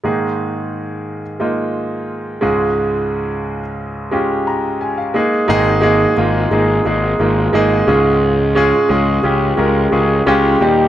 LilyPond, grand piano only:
<<
  \new Staff \with { instrumentName = "Grand piano" } { \time 4/4 \key des \lydian \tempo 4 = 88 << { r1 | r2 r8 bes''8 aes''16 f''8. | r1 | r1 | } \\ { <aes bes ees' aes'>4. r8 <aes bes ees' f'>4. <aes des' f' aes'>8~ | <aes des' f' aes'>4 r4 <aes des' f' g'>4. <aes bes ees' aes'>8 | <aes bes ees' aes'>8 <aes bes ees' aes'>8 <aes bes ees' f'>8 <aes bes ees' aes'>8 <aes bes ees' aes'>8 <aes bes ees' f'>8 <aes bes ees' aes'>8 <aes des' f' aes'>8~ | <aes des' f' aes'>8 <aes des' f' aes'>8 <aes des' f' aes'>8 <aes des' f' g'>8 <aes des' f' bes'>8 <aes des' f' aes'>8 <aes des' f' g'>8 <g bes ees' g'>8 | } >> }
  \new Staff \with { instrumentName = "Grand piano" } { \clef bass \time 4/4 \key des \lydian <aes, ees>2.~ <aes, ees>8 <des, aes,>8~ | <des, aes,>2.~ <des, aes,>8 r8 | <aes, ees>4. r2 aes,8~ | aes,4 r2 r8 bes,8 | }
>>